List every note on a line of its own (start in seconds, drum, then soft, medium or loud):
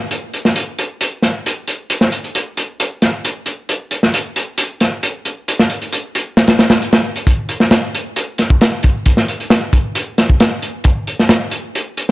0.11 closed hi-hat medium
0.34 closed hi-hat medium
0.45 snare soft
0.56 closed hi-hat medium
0.79 closed hi-hat medium
1.01 closed hi-hat medium
1.22 snare soft
1.22 closed hi-hat medium
1.46 closed hi-hat medium
1.68 closed hi-hat medium
1.90 closed hi-hat medium
2.01 snare soft
2.12 closed hi-hat medium
2.24 closed hi-hat soft
2.35 closed hi-hat medium
2.57 closed hi-hat medium
2.80 closed hi-hat medium
3.02 snare soft
3.02 closed hi-hat medium
3.25 closed hi-hat medium
3.46 closed hi-hat medium
3.69 closed hi-hat medium
3.91 closed hi-hat medium
4.03 snare soft
4.14 closed hi-hat medium
4.36 closed hi-hat medium
4.58 closed hi-hat medium
4.80 snare soft
4.80 closed hi-hat medium
5.03 closed hi-hat medium
5.25 closed hi-hat medium
5.48 closed hi-hat medium
5.59 snare medium
5.70 closed hi-hat medium
5.82 closed hi-hat soft
5.93 closed hi-hat medium
6.15 closed hi-hat medium
6.37 snare medium
6.37 closed hi-hat medium
6.48 snare loud
6.48 closed hi-hat medium
6.59 snare loud
6.59 closed hi-hat medium
6.70 snare loud
6.70 closed hi-hat medium
6.82 closed hi-hat medium
6.93 snare medium
6.93 closed hi-hat medium
7.16 closed hi-hat medium
7.27 kick loud
7.27 closed hi-hat medium
7.49 closed hi-hat medium
7.60 snare medium
7.71 snare loud
7.71 closed hi-hat medium
7.95 closed hi-hat medium
8.16 closed hi-hat medium
8.38 snare soft
8.38 closed hi-hat medium
8.50 kick loud
8.61 snare loud
8.61 closed hi-hat medium
8.83 kick loud
8.83 closed hi-hat medium
9.06 kick loud
9.06 closed hi-hat medium
9.17 snare medium
9.28 closed hi-hat medium
9.40 closed hi-hat soft
9.50 snare loud
9.50 closed hi-hat medium
9.73 kick medium
9.73 closed hi-hat medium
9.95 closed hi-hat loud
10.18 snare medium
10.18 closed hi-hat medium
10.30 kick loud
10.40 snare loud
10.40 closed hi-hat medium
10.62 closed hi-hat medium
10.84 kick loud
10.84 closed hi-hat medium
11.07 closed hi-hat medium
11.20 snare medium
11.29 snare loud
11.29 closed hi-hat medium
11.51 closed hi-hat medium
11.75 closed hi-hat medium
11.97 closed hi-hat medium